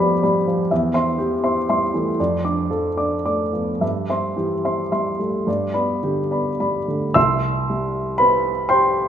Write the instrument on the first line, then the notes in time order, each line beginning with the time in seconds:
grand piano
Already playing: F2 F3 G3 A3 G4
0.00 B3 D5 B5
0.23 G3 D5 B5
0.47 F3
0.71 E2 E5
0.94 C4 E5 C6
1.18 E3 G4
1.44 C4 E5 C6
1.69 G3 E5 C6
1.94 E3 A3
2.20 F2 D5
2.44 D4 D5 D6
2.70 F3 A4
2.97 D4 D5 D6
3.25 A3 D5 D6
3.53 F3 B3
3.81 G2 E5
4.10 C4 E5 C6
4.36 E3 G4
4.65 C4 E5 C6
4.92 G3 E5 C6
5.19 G3 A3
5.47 G2 D5
5.74 B3 D5 B5
6.03 D3 G4
6.31 B3 D5 B5
6.60 G3 D5 B5
6.88 D3 A3
7.14 C2 E5 C6 E6
7.70 G3
8.18 C4 B4 B5
8.69 G4 C5 G5 C6